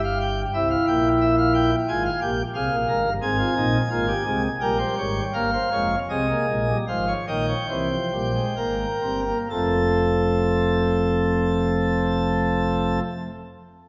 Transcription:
0.00 0.45 G1 medium
0.00 0.45 G2 medium
0.00 0.45 G4 medium
0.00 0.18 F5 loud
0.21 0.41 G5 loud
0.54 0.75 C2 medium
0.54 0.75 C3 medium
0.54 1.70 E4 medium
0.54 0.68 E5 loud
0.71 0.85 F5 loud
0.87 1.74 A#1 medium
0.87 1.74 A#2 medium
0.87 1.08 G5 loud
1.21 1.36 E5 loud
1.38 1.52 F5 loud
1.54 1.75 G5 loud
1.88 2.09 G#1 medium
1.88 2.09 G#2 medium
1.88 2.09 F4 medium
1.88 2.03 G#5 loud
2.05 2.19 F5 loud
2.21 2.42 A#1 medium
2.21 2.42 A#2 medium
2.21 2.42 G4 medium
2.21 2.42 G5 loud
2.55 2.69 C2 medium
2.55 2.69 C3 medium
2.55 2.76 G#4 medium
2.55 3.13 F5 loud
2.72 2.86 A#1 medium
2.72 2.86 A#2 medium
2.88 3.03 G#1 loud
2.88 3.03 G#2 medium
2.88 3.09 A#4 medium
3.05 3.20 G1 medium
3.05 3.20 G2 medium
3.22 3.43 G#1 medium
3.22 3.43 G#2 medium
3.22 3.81 C4 medium
3.22 3.37 G#4 loud
3.22 4.42 G#5 medium
3.39 3.54 F4 loud
3.56 3.78 A#1 medium
3.56 3.78 A#2 medium
3.56 3.78 D#4 loud
3.90 4.12 G#1 loud
3.90 4.13 G#2 medium
3.90 4.12 A#3 medium
3.90 4.06 F4 loud
4.08 4.23 G4 loud
4.25 4.48 C2 medium
4.25 4.48 C3 medium
4.25 4.48 G#3 medium
4.25 4.48 G#4 loud
4.61 4.84 A#1 medium
4.61 4.84 A#2 medium
4.61 5.24 G3 medium
4.61 4.77 A#4 loud
4.61 5.24 G5 loud
4.79 4.95 C5 loud
4.98 5.20 G#1 medium
4.98 5.20 G#2 medium
4.98 5.21 C#5 loud
5.34 5.57 G1 medium
5.34 5.57 G2 medium
5.34 5.57 A#3 medium
5.34 5.50 A#4 loud
5.34 5.99 F5 medium
5.53 5.69 C5 loud
5.72 5.95 F1 medium
5.72 5.95 F2 medium
5.72 5.96 G#3 medium
5.72 5.95 C#5 loud
6.10 6.34 C2 medium
6.10 6.34 C3 medium
6.10 6.26 C4 medium
6.10 6.77 G#4 medium
6.10 6.77 D#5 medium
6.29 6.46 A#3 medium
6.49 6.73 A#1 medium
6.49 6.73 A#2 medium
6.49 6.65 G#3 medium
6.68 6.85 G3 medium
6.88 7.13 G#1 medium
6.88 7.13 G#2 medium
6.88 7.13 F3 medium
6.88 7.05 C5 medium
6.88 7.13 F5 medium
7.08 7.25 C#5 medium
7.28 7.54 A#1 medium
7.28 7.54 A#2 medium
7.28 7.54 D#3 medium
7.28 7.46 D#5 medium
7.28 9.20 G5 medium
7.48 7.67 C#5 medium
7.69 7.96 C2 medium
7.69 7.96 C3 medium
7.69 7.88 E3 medium
7.69 8.45 C5 medium
7.91 8.10 F3 medium
8.12 8.40 A#1 medium
8.12 8.40 A#2 medium
8.12 8.32 G3 medium
8.34 8.54 G#3 medium
8.56 8.85 G#1 medium
8.56 8.85 G#2 medium
8.56 8.85 A#3 medium
8.56 9.38 A#4 medium
9.02 9.32 G1 medium
9.02 9.32 G2 medium
9.02 9.23 C4 medium
9.26 9.48 A#3 medium
9.50 12.99 F1 medium
9.50 13.00 F2 medium
9.50 13.03 F3 medium
9.50 13.03 A3 medium
9.50 13.00 C4 medium
9.50 12.99 A4 medium
9.50 12.99 A5 medium

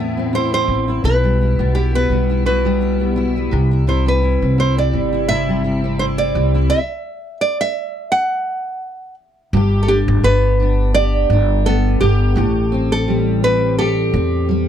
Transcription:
0.00 0.64 E2 medium
0.00 1.03 A2 medium
0.00 1.23 B3 medium
0.00 0.16 C4 medium
0.00 0.33 E4 medium
0.00 0.29 E5 loud
0.17 0.51 C4 medium
0.33 0.88 E4 medium
0.33 0.52 C5 medium
0.52 1.11 C4 medium
0.52 1.04 C5 medium
0.68 1.01 A1 medium
0.88 1.04 E4 medium
1.04 1.55 B1 loud
1.04 2.44 B2 medium
1.04 1.41 E4 medium
1.04 1.71 B4 medium
1.24 2.11 G3 soft
1.41 1.75 E4 soft
1.59 2.06 B1 medium
1.59 1.93 B3 medium
1.75 2.29 E4 medium
1.75 1.95 G4 medium
1.95 2.99 B3 medium
1.95 2.45 B4 medium
2.10 3.48 B1 medium
2.10 2.65 G3 medium
2.30 2.46 E4 medium
2.46 3.51 B2 medium
2.46 2.81 E4 medium
2.46 3.48 B4 medium
2.65 4.06 G3 medium
2.81 3.16 E4 medium
3.00 3.35 B3 soft
3.16 3.71 E4 medium
3.36 3.60 B3 medium
3.51 4.38 C2 medium
3.51 3.86 C3 medium
3.71 3.87 E4 medium
3.87 5.28 C3 medium
3.87 4.22 E4 medium
3.87 4.08 C5 medium
4.06 4.92 G3 medium
4.06 4.59 B4 medium
4.23 4.57 E4 medium
4.42 4.89 C2 medium
4.42 4.76 C4 medium
4.58 5.11 E4 medium
4.58 4.77 C5 medium
4.77 5.83 C4 medium
4.77 5.28 D5 medium
4.93 6.31 G1 medium
4.93 5.48 G3 medium
5.13 5.29 E4 medium
5.29 6.78 C3 medium
5.29 5.63 E4 medium
5.29 5.99 E5 loud
5.49 6.34 G3 medium
5.64 5.99 E4 medium
5.84 6.18 C4 medium
5.99 6.53 E4 medium
5.99 6.05 C5 medium
6.18 6.78 C4 medium
6.18 6.66 D5 medium
6.35 6.68 C2 loud
6.35 6.78 G3 medium
6.54 6.78 E4 medium
6.70 7.37 E5 medium
7.41 7.60 D5 medium
7.61 8.11 E5 loud
8.12 9.14 F#5 medium
9.53 10.04 G1 loud
9.53 12.37 G2 medium
9.53 10.94 G4 medium
9.83 9.89 A4 medium
9.88 10.59 D4 medium
9.88 9.98 G4 medium
10.08 10.23 G1 loud
10.23 11.26 G1 medium
10.23 11.64 B3 medium
10.23 10.91 B4 medium
10.60 11.29 D4 medium
10.95 12.00 G4 medium
10.95 11.66 D5 loud
11.30 11.97 G1 loud
11.30 12.44 D4 medium
11.66 12.44 B3 medium
11.66 12.02 A4 medium
12.01 12.34 G1 loud
12.01 12.87 G4 medium
12.01 12.36 G4 medium
12.35 14.09 A1 loud
12.35 14.68 A2 medium
12.35 13.78 G4 medium
12.72 13.43 C4 medium
12.92 13.44 A4 medium
13.08 14.47 G3 medium
13.43 14.14 C4 medium
13.43 13.76 B4 medium
13.79 14.68 G4 medium
13.79 14.68 A4 medium
14.14 14.68 E2 loud
14.14 14.68 C4 medium
14.49 14.68 G3 medium

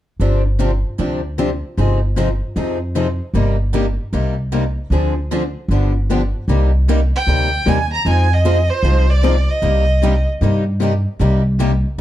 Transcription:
0.19 0.82 G1 medium
0.19 0.41 C3 medium
0.19 0.41 F3 medium
0.19 0.41 C4 medium
0.19 0.41 D4 medium
0.19 0.42 G4 medium
0.59 0.70 C3 medium
0.59 0.70 F3 medium
0.59 0.70 C4 medium
0.59 0.71 D4 medium
0.59 0.71 G4 medium
0.98 1.61 D2 medium
0.98 1.19 C3 medium
0.98 1.19 F3 medium
0.98 1.19 C4 medium
0.98 1.20 D4 medium
0.98 1.20 G4 medium
1.38 1.49 C3 medium
1.38 1.49 F3 medium
1.38 1.49 C4 medium
1.38 1.49 D4 medium
1.38 1.49 G4 medium
1.78 2.40 G1 medium
1.78 1.99 C3 medium
1.78 1.99 F3 medium
1.78 1.99 C4 medium
1.78 1.99 D#4 medium
1.78 1.99 G#4 medium
2.17 2.28 C3 medium
2.17 2.28 F3 medium
2.17 2.28 C4 medium
2.17 2.28 D#4 medium
2.17 2.28 G#4 medium
2.56 3.18 F2 medium
2.56 2.77 C3 medium
2.56 2.77 F3 medium
2.56 2.77 C4 medium
2.56 2.77 D#4 medium
2.56 2.77 G#4 medium
2.95 3.06 C3 medium
2.95 3.06 F3 medium
2.95 3.06 C4 medium
2.95 3.06 D#4 medium
2.95 3.07 G#4 medium
3.34 3.96 G1 medium
3.34 3.56 C3 medium
3.34 3.56 G3 medium
3.34 3.56 A#3 medium
3.34 3.56 D#4 medium
3.34 3.56 G4 medium
3.73 3.84 C3 medium
3.73 3.84 G3 medium
3.73 3.85 A#3 medium
3.73 3.85 D#4 medium
3.73 3.85 G4 medium
4.13 4.75 C2 medium
4.13 4.34 C3 medium
4.13 4.34 G3 medium
4.13 4.34 A#3 medium
4.13 4.34 D#4 medium
4.13 4.34 G4 medium
4.52 4.63 C3 medium
4.52 4.63 G3 medium
4.52 4.63 A#3 medium
4.52 4.63 D#4 medium
4.52 4.63 G4 medium
4.90 5.53 D2 medium
4.90 5.13 D3 medium
4.90 5.13 F3 medium
4.90 5.13 C4 medium
4.90 5.13 D4 medium
4.90 5.13 G#4 medium
5.31 5.42 D3 medium
5.31 5.42 F3 medium
5.31 5.42 C4 medium
5.31 5.42 D4 medium
5.31 5.43 G#4 medium
5.68 6.32 G1 medium
5.68 5.92 D3 medium
5.68 5.92 F3 medium
5.68 5.92 B3 medium
5.68 5.92 D4 medium
5.68 5.92 G4 medium
6.10 6.21 D3 medium
6.10 6.21 F3 medium
6.10 6.21 B3 medium
6.10 6.21 D4 medium
6.10 6.21 G4 medium
6.48 7.11 C2 medium
6.48 6.70 C3 medium
6.48 6.70 G3 medium
6.48 6.70 A#3 medium
6.48 6.70 D#4 medium
6.48 6.70 G4 medium
6.88 6.99 C3 medium
6.88 6.99 G3 medium
6.88 7.00 A#3 medium
6.88 7.00 D#4 loud
6.88 7.00 G4 medium
7.16 7.70 G5 loud
7.27 7.60 D2 medium
7.27 7.49 C3 medium
7.27 7.49 G3 medium
7.27 7.49 A#3 medium
7.27 7.49 D#4 medium
7.27 7.49 G4 medium
7.66 7.99 D#2 medium
7.66 7.78 C3 medium
7.66 7.78 G3 medium
7.66 7.78 A#3 medium
7.66 7.78 D#4 medium
7.66 7.78 G4 medium
7.66 7.92 G#5 medium
7.93 8.06 A#5 medium
8.05 8.68 F2 medium
8.05 8.27 F3 medium
8.05 8.27 G#3 medium
8.05 8.27 C4 medium
8.05 8.27 D#4 medium
8.05 8.27 F4 medium
8.05 8.27 G#4 medium
8.05 8.27 C5 medium
8.05 8.35 G#5 loud
8.33 8.72 D#5 medium
8.45 8.56 F3 medium
8.45 8.56 G#3 medium
8.45 8.56 C4 medium
8.45 8.56 D#4 medium
8.45 8.56 F4 medium
8.45 8.56 G#4 medium
8.45 8.56 C5 loud
8.70 9.11 C5 medium
8.83 9.46 C2 medium
8.83 9.05 F3 medium
8.83 9.05 G#3 medium
8.83 9.05 C4 medium
8.83 9.05 D#4 medium
8.83 9.05 F4 medium
8.83 9.05 G#4 medium
8.83 9.06 C5 medium
9.10 9.52 D5 medium
9.23 9.34 F3 medium
9.23 9.34 G#3 medium
9.23 9.34 C4 medium
9.23 9.35 D#4 medium
9.23 9.35 F4 medium
9.23 9.35 G#4 medium
9.23 9.35 C5 medium
9.50 10.27 D#5 medium
9.62 10.25 C2 medium
9.62 9.83 C3 medium
9.62 9.83 G3 medium
9.62 9.84 A#3 medium
9.62 9.84 D#4 medium
9.62 9.84 G4 medium
10.03 10.13 C3 medium
10.03 10.14 G3 medium
10.03 10.14 A#3 medium
10.03 10.14 D#4 medium
10.03 10.14 G4 loud
10.41 11.04 G2 medium
10.41 10.63 C3 medium
10.41 10.63 G3 medium
10.41 10.63 A#3 medium
10.41 10.63 D#4 medium
10.41 10.63 G4 medium
10.82 10.92 C3 medium
10.82 10.92 G3 medium
10.82 10.92 A#3 medium
10.82 10.93 D#4 medium
10.82 10.93 G4 medium
11.20 11.82 C2 medium
11.20 11.41 C3 medium
11.20 11.41 G3 medium
11.20 11.41 A#3 medium
11.20 11.42 D#4 medium
11.20 11.42 G4 medium
11.60 11.71 C3 medium
11.60 11.70 G3 medium
11.60 11.71 A#3 medium
11.60 11.71 D#4 medium
11.60 11.71 G4 medium

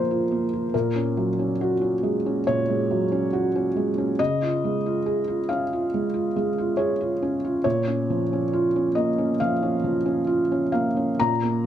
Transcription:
0.00 0.76 F3 soft
0.00 0.31 A#3 soft
0.00 0.11 F4 soft
0.00 0.76 G#4 medium
0.00 0.74 A#4 medium
0.00 0.74 C5 medium
0.11 0.44 F4 soft
0.31 0.65 A#3 soft
0.53 0.74 F4 soft
0.74 2.43 A#2 medium
0.74 2.46 A#4 medium
0.96 1.30 C#4 soft
1.17 1.51 F#3 soft
1.39 1.73 C#4 soft
1.61 1.95 F#4 soft
1.81 2.16 C#4 soft
2.03 2.38 G#3 soft
2.26 2.60 C#4 soft
2.47 4.16 A#2 soft
2.47 4.19 C#5 medium
2.68 3.03 G#3 soft
2.91 3.25 F#3 soft
3.12 3.46 C#4 soft
3.33 3.67 F#4 soft
3.56 3.89 C#4 soft
3.76 4.10 G#3 soft
3.98 4.19 C#4 soft
4.19 5.88 C#3 medium
4.19 5.49 D#5 medium
4.42 4.76 F4 soft
4.64 4.98 G#3 soft
4.86 5.19 F4 soft
5.06 5.40 G#4 soft
5.28 5.62 F4 soft
5.49 5.84 C#4 soft
5.49 6.35 F5 medium
5.73 6.06 F4 soft
5.94 6.27 G#3 soft
6.14 6.48 F4 soft
6.36 6.70 G#3 soft
6.58 6.92 F4 soft
6.77 7.13 G#4 medium
6.77 7.63 C#5 medium
7.01 7.35 F4 soft
7.22 7.57 C#4 soft
7.45 7.65 F4 soft
7.64 9.34 A#2 medium
7.64 8.94 C#5 medium
7.88 8.21 C#4 soft
8.10 8.43 F3 soft
8.33 8.65 C#4 soft
8.53 8.87 F4 medium
8.76 9.09 C#4 soft
8.95 9.30 A#3 soft
8.95 9.38 D#5 medium
9.18 9.52 C#4 soft
9.40 9.75 F3 soft
9.40 10.71 F5 medium
9.63 9.96 C#4 soft
9.84 10.18 F3 soft
10.06 10.40 C#4 soft
10.27 10.63 F4 medium
10.52 10.87 C#4 soft
10.72 11.09 A#3 soft
10.72 11.17 F5 medium
10.97 11.32 C#4 soft
11.20 11.66 A#2 medium
11.20 11.66 A#5 medium
11.43 11.66 A#3 soft

